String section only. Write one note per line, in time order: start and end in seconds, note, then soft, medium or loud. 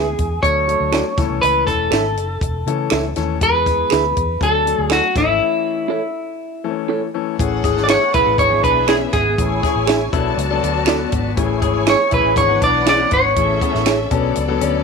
7.40 8.37 C#4 medium
7.40 8.37 A4 medium
7.40 8.37 F#5 medium
8.39 9.37 B3 medium
8.39 9.37 G#4 medium
8.39 9.37 E5 medium
9.39 10.12 E4 medium
9.39 10.12 C#5 medium
9.39 10.12 G#5 medium
10.14 11.35 F#4 medium
10.14 11.36 D5 medium
10.14 11.35 A5 medium
11.37 12.35 E4 medium
11.37 12.35 C#5 medium
11.37 12.35 G#5 medium
12.37 13.35 D4 medium
12.37 13.35 B4 medium
12.37 13.35 F#5 medium
13.37 14.10 C#4 medium
13.37 14.10 A4 medium
13.37 14.10 E5 medium
14.11 14.84 B3 medium
14.11 14.84 A4 medium
14.11 14.84 D5 medium